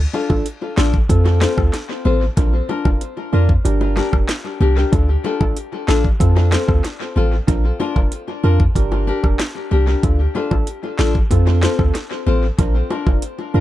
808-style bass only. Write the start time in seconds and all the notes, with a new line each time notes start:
0.30 A1
0.78 A1
1.10 F2
1.58 D2
2.05 A1
2.37 A#1
2.85 F1
3.33 F2
3.65 G1
4.13 F1
4.61 C2
4.93 D2
5.41 A1
5.88 A1
6.20 F2
6.69 D2
7.16 A1
7.48 A#1
7.96 F1
8.44 F2
8.75 G1
9.24 F1
9.71 C2
10.03 D2
10.51 A1
10.99 A1
11.31 F2
11.79 D2
12.27 A1
12.59 A#1
13.07 F1
13.54 F2